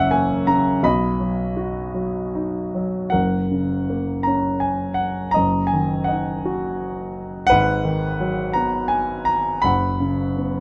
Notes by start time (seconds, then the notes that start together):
Already playing: F#1 F#2 C#3 C#4 A#4 C#5 E5 F#5
0.11 A#3 G#5
0.47 C#3 A#5
0.83 B1 B2 D#5 B5
1.20 F#3
1.57 F#4
1.94 F#3
2.35 D#4
2.75 F#3
3.10 F#1 F#2 A#4 F#5
3.51 C#3
3.90 A#3
4.23 C#4 A#5
4.60 G#5
4.94 F#5
5.31 D#5 A#5
5.36 F#1 F#2
5.67 G#5
5.73 D#3
6.04 D#5 F#5
6.10 D#4
6.45 F#4
7.47 G#1 B4 F#5
7.51 G#2
7.85 D#3
8.20 F#3
8.53 B3 A#5
8.88 G#5
9.25 A#5
9.62 F#1 F#2 F#5 B5
10.00 C#3
10.37 B3